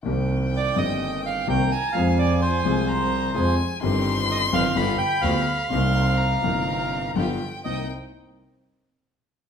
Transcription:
<<
  \new Staff \with { instrumentName = "Violin" } { \time 4/4 \key c \minor \tempo 4 = 127 g''2. bes''4 | aes''2 bes''4 aes''4 | c'''2 b''2 | c'''4 bes''2 g''4 |
g''8 r2. r8 | }
  \new Staff \with { instrumentName = "Bandoneon" } { \time 4/4 \key c \minor r4 d''8 ees''4 f''8 g''8 aes''8 | f''8 d''8 c''2~ c''8 r8 | r4 ees''8 f''4 g''8 f''4~ | f''2. r4 |
ees''8 r2. r8 | }
  \new Staff \with { instrumentName = "String section" } { \time 4/4 \key c \minor r1 | r1 | <c' ees' g'>4. <c' ees' g'>8 <b f' g'>8 r8 <b f' g'>8 r8 | <c' ees' bes'>4. <c' ees' bes'>4. <b f' g'>8 r8 |
<c' ees' bes'>8 r2. r8 | }
  \new Staff \with { instrumentName = "Grand piano" } { \clef bass \time 4/4 \key c \minor <c, c ees bes c' g'>4. <g,, g, ees bes c' g'>4. <c, c ees bes c' g'>8 r8 | <f, f aes c' aes'>4. <c, c f aes c' aes'>4. <f, f aes c' aes'>8 r8 | <g,, g, ees g c' g'>4. <g,, g, ees g c' g'>8 <g,, g, d g b f'>8 r8 <d, d g b f'>8 r8 | <c, c g bes ees'>4. <g,, g, c g bes ees'>4. <g,, g, d g b f'>8 r8 |
<c, bes c' ees'>8 r2. r8 | }
  \new Staff \with { instrumentName = "Double bass" } { \clef bass \time 4/4 \key c \minor c,4. g,,4. c,8 r8 | f,4. c,4. f,8 r8 | g,,4. g,,8 g,,8 r8 d,8 r8 | c,4. g,,4. g,,8 r8 |
c,8 r2. r8 | }
>>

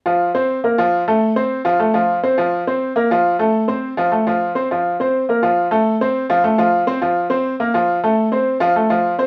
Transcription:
\new Staff \with { instrumentName = "Upright piano" } { \time 4/4 \key f \phrygian \tempo 4 = 207 <f f'>4 <c' c''>4 <bes bes'>8 <f f'>4 <a a'>8~ | <a a'>8 <c' c''>4 <f f'>8 <a a'>8 <f f'>4 <c' c''>8 | <f f'>4 <c' c''>4 <bes bes'>8 <f f'>4 <a a'>8~ | <a a'>8 <c' c''>4 <f f'>8 <a a'>8 <f f'>4 <c' c''>8 |
<f f'>4 <c' c''>4 <bes bes'>8 <f f'>4 <a a'>8~ | <a a'>8 <c' c''>4 <f f'>8 <a a'>8 <f f'>4 <c' c''>8 | <f f'>4 <c' c''>4 <bes bes'>8 <f f'>4 <a a'>8~ | <a a'>8 <c' c''>4 <f f'>8 <a a'>8 <f f'>4 <c' c''>8 | }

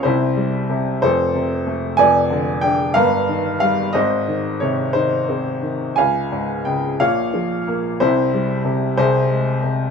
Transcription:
<<
  \new Staff \with { instrumentName = "Upright piano" } { \time 6/8 \key aes \major \tempo 4. = 61 << { c''4. c''4. | aes''4 g''8 f''4 f''8 | ees''4 des''8 c''4. | aes''4 g''8 f''4. |
c''4. c''4. | } \\ { e'4. a'4. | d''4. bes'4. | c''4. ees'4. | f''4. des''4. |
e'4. aes'4. | } >> }
  \new Staff \with { instrumentName = "Upright piano" } { \clef bass \time 6/8 \key aes \major <c, c>8 g8 c8 <f,, f,>8 c8 a8 | <f,, f,>8 d8 d'8 <g,, g,>8 ees8 g8 | <aes,, aes,>8 ees8 c8 ees8 c'8 ees8 | des,8 aes,8 des8 <bes,, bes,>8 f8 bes8 |
<c, c>8 g8 c8 <c, c>8 aes8 c8 | }
>>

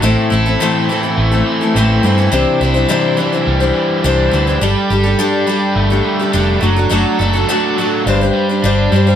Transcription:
<<
  \new Staff \with { instrumentName = "Tonewheel organ" } { \time 4/4 \key c \lydian \tempo 4 = 105 <e' a' c'' e''>1 | <e' g' c'' d''>1 | <d' g' a' d''>2.~ <d' g' a' d''>8 <d' fis' a' d''>8~ | <d' fis' a' d''>2 <d' g' c'' d''>2 | }
  \new Staff \with { instrumentName = "Steel-string acoustic guitar" } { \time 4/4 \key c \lydian <a, e a c' e' a'>8 <a c' e' a'>16 <a c' e' a'>16 <a, e a c' e' a'>8 <a c' e' a'>16 <a c' e' a'>8 <a c' e' a'>8 <a c' e' a'>16 <a, e a c' e' a'>8 <a c' e' a'>16 <a c' e' a'>16 | <c e g d' e' c''>8 <g d' e' c''>16 <g d' e' c''>16 <c e g d' e' c''>8 <g d' e' c''>16 <g d' e' c''>8 <g d' e' c''>8. <c e g d' e' c''>8 <g d' e' c''>16 <g d' e' c''>16 | <g d' g' a'>8 <g d' g' a'>16 <d' g' a'>16 <g d' g' a'>8 <g d' g' a'>8. <d' g' a'>8 <d' g' a'>16 <g d' g' a'>8 <a d' fis' a'>16 <d' fis' a'>16 | <fis a d' fis' a'>8 <a d' fis' a'>16 <d' fis' a'>16 <fis a d' fis' a'>8 <a d' fis' a'>8 <g d' g' c''>16 <d' g' c''>8 <d' g' c''>16 <g d' g' c''>8 <g d' g' c''>16 <d' g' c''>16 | }
  \new Staff \with { instrumentName = "Overdriven electric guitar" } { \clef bass \time 4/4 \key c \lydian a,8 e'8 c'8 e8 a8 e8 c'8 e8 | c8 e'8 d'8 e8 g8 e8 d'8 e8 | g8 g'8 d'8 g8 a8 g8 d'8 fis8 | fis8 a'8 d'8 fis8 g,8 g8 d'8 g8 | }
  \new Staff \with { instrumentName = "Fingered electric bass" } { \clef bass \time 4/4 \key c \lydian a,,16 r16 a,,8 r4 a,,8 r8 a,,8 g,8 | c,16 r16 c,8 r4 c,8 r8 c,8 d,8 | g,,16 r16 g,,8 r4 g,,8 r8 f,,8 fis,,8 | fis,,16 r16 fis,,8 r4 g,,8 r8 g,,8 g,8 | }
>>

